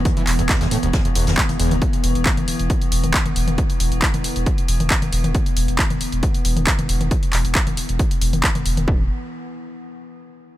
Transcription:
<<
  \new Staff \with { instrumentName = "Synth drone" } { \clef bass \time 4/4 \key c \lydian \tempo 4 = 136 <e b>1~ | <e b>1~ | <e b>1~ | <e b>1~ |
<e b>1 | r1 | }
  \new Staff \with { instrumentName = "Acid bass" } { \clef bass \time 4/4 \key c \lydian e,16 e16 r16 e,16 e,16 e,16 a,16 d,16 e,16 e,16 e,16 e,16 g,16 r16 e,16 d,16 | r1 | r1 | r1 |
r1 | r1 | }
  \new Staff \with { instrumentName = "Sub bass" } { \clef bass \time 4/4 \key c \lydian r8 e,,16 e,,16 r16 e,,16 r16 e,,16 r8 e,,16 e,,16 r16 e,,16 e,,16 e,,16 | r8 e,,16 e,,16 r16 e,,16 r16 e,,16 r8 e,,16 e,,16 r16 e,,16 e,,16 e,,16 | r8 e,,16 e,,16 r16 e,,16 r16 e,,16 r8 e,,16 e,,16 r16 e,,16 e,,16 e,,16 | r8 e,,16 e,,16 r16 e,,16 r16 e,,16 r8 e,,16 e,,16 r16 e,,16 e,,16 e,,16 |
r8 e,,16 e,,16 r16 e,,16 r16 e,,16 r8 e,,16 e,,16 r16 e,,16 e,,16 e,,16 | e,,8 r2. r8 | }
  \new DrumStaff \with { instrumentName = "Drums" } \drummode { \time 4/4 <hh bd>16 hh16 <hc hh hho>16 hh16 <hc hh bd sn>16 <hh sn toml>16 <hh hho>16 hh16 <hh bd sn>16 hh16 <hh hho>16 <hh sn toml>16 <hc hh bd>16 <hh toml>16 <hh hho>16 <hh toml>16 | <hh bd>16 hh16 hho16 hh16 <hc hh bd>16 <hh toml>16 hho16 hh16 <hh bd>16 hh16 hho16 <hh toml>16 <hc hh bd>16 <hh toml>16 hho16 <hh toml>16 | <hh bd>16 hh16 hho16 hh16 <hc hh bd>16 <hh toml>16 hho16 hh16 <hh bd>16 hh16 hho16 <hh toml>16 <hc hh bd>16 <hh toml>16 hho16 <hh toml>16 | <hh bd>16 hh16 hho16 hh16 <hc hh bd>16 <hh toml>16 hho16 hh16 <hh bd>16 hh16 hho16 <hh toml>16 <hc hh bd>16 <hh toml>16 hho16 <hh toml>16 |
<hh bd>16 hh16 <hc hho>16 hh16 <hc hh bd>16 <hh toml>16 hho16 hh16 <hh bd>16 hh16 hho16 <hh toml>16 <hc hh bd>16 <hh toml>16 hho16 <hh toml>16 | bd4 r4 r4 r4 | }
>>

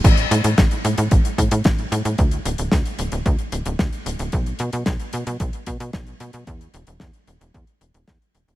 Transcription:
<<
  \new Staff \with { instrumentName = "Analog synth bass" } { \clef bass \time 4/4 \key a \mixolydian \tempo 4 = 112 a,,8 a,16 a,16 a,,16 r16 a,16 a,16 a,,16 r16 a,16 a,16 a,,8 a,16 a,16 | d,8 d,,16 d,,16 d,16 r16 d,,16 d,,16 d,16 r16 d,,16 d,,16 d,16 r16 d,,16 d,,16 | b,,8 b,16 b,16 b,,16 r16 b,16 b,16 b,,16 r16 b,16 b,16 b,,8 b,16 b,16 | e,8 e,,16 e,,16 e,16 r16 e,,16 e,,16 e,16 r16 e,,16 e,,16 e,16 r16 e,,16 e,,16 | }
  \new DrumStaff \with { instrumentName = "Drums" } \drummode { \time 4/4 <cymc hh bd>16 hh16 hh16 hh16 <hh bd sn>16 hh16 hh16 hh16 <hh bd>16 hh16 <hh bd>16 hh16 <hh bd sn>16 hh16 hh16 hh16 | <hh bd>16 hh16 hh16 hh16 <hh bd sn>16 hh16 hh16 hh16 <hh bd>16 hh16 hh16 hh16 <hh bd sn>16 hh16 hh16 hh16 | <hh bd>16 hh16 hh16 hh16 <hh bd sn>16 hh16 hh16 hh16 <hh bd>16 hh16 <hh bd>16 hh16 <hh bd sn>16 hh16 hh16 hh16 | <hh bd>16 hh16 hh16 hh16 <hh bd sn>16 hh16 hh16 hh16 <hh bd>16 hh16 hh16 hh16 <hh bd sn>16 hh16 hh16 hh16 | }
>>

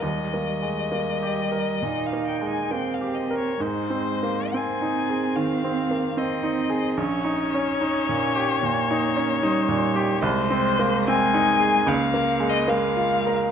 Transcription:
<<
  \new Staff \with { instrumentName = "Violin" } { \time 4/4 \key aes \major \tempo 4 = 72 ees''2~ ees''16 f''16 g''16 aes''16 g''16 f''16 ees''16 des''16 | c''4 aes''4 f''4 ees''4 | des''1 | c''4 aes''4 f''8. ees''16 f''4 | }
  \new Staff \with { instrumentName = "Grand piano" } { \time 4/4 \key aes \major \tuplet 3/2 { ees,8 bes8 aes8 bes8 g'8 bes'8 bes,8 bes8 aes8 bes8 g'8 bes'8 } | \tuplet 3/2 { aes,8 c'8 bes8 c'8 ees'8 aes'8 ees8 c'8 bes8 c'8 ees'8 aes'8 } | \tuplet 3/2 { bes,,8 ees'8 des'8 ees'8 bes,8 g'8 bes,8 ees'8 des'8 ees'8 bes,8 g'8 } | \tuplet 3/2 { c,8 c'8 bes8 c'8 ees'8 aes'8 des,8 bes8 aes8 bes8 f'8 bes'8 } | }
  \new Staff \with { instrumentName = "Cello" } { \time 4/4 \key aes \major g4 g4 ees'4 c'4 | aes4 c'2 c'4 | des'2 bes4 g4 | aes2 bes4 aes4 | }
>>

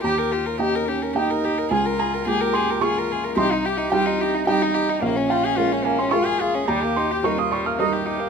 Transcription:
<<
  \new Staff \with { instrumentName = "Felt piano" } { \time 3/4 \key bes \dorian \tempo 4 = 108 << { bes''4 g''4 g''4 | aes''8 bes''4 c'''8 des'''4 | c'''4 g''4 g''4 | f''8 g''4 aes''16 c'''16 des'''4 |
bes''8 c'''8 des'''16 ees'''16 des'''16 f'''16 ees'''4 | } \\ { ees,4 <bes ees' g'>4 <bes ees' g'>4 | des,4 <aes bes f'>4 <bes f' aes'>4 | c,4 <g ees' g'>4 <g ees' g'>4 | bes,,4 <aes f' bes'>4 <aes f' bes'>4 |
ees,4 <g g' bes'>4 <g g' bes'>4 | } >> }
  \new Staff \with { instrumentName = "Violin" } { \time 3/4 \key bes \dorian g'16 bes'16 g'16 bes'16 g'16 bes'16 g'16 bes'16 g'16 bes'16 g'16 bes'16 | aes'16 bes'16 aes'16 bes'16 aes'16 bes'16 aes'16 bes'16 aes'16 bes'16 aes'16 bes'16 | g'16 ees'16 g'16 ees'16 g'16 ees'16 g'16 ees'16 g'16 ees'16 g'16 ees'16 | bes16 des'16 f'16 aes'16 f'16 des'16 bes16 des'16 f'16 aes'16 f'16 des'16 |
g16 bes16 ees'16 g'16 ees'16 bes16 g16 bes16 ees'16 g'16 ees'16 bes16 | }
  \new Staff \with { instrumentName = "Cello" } { \time 3/4 \key bes \dorian g'8 f'8 ees'8 des'8 ees'4 | f'4 g'4 f'4 | ees'8 g'8 f'8 ees'8 ees'4 | des'2 f'8 aes'8 |
g'4 f'4 ees'8 g'8 | }
>>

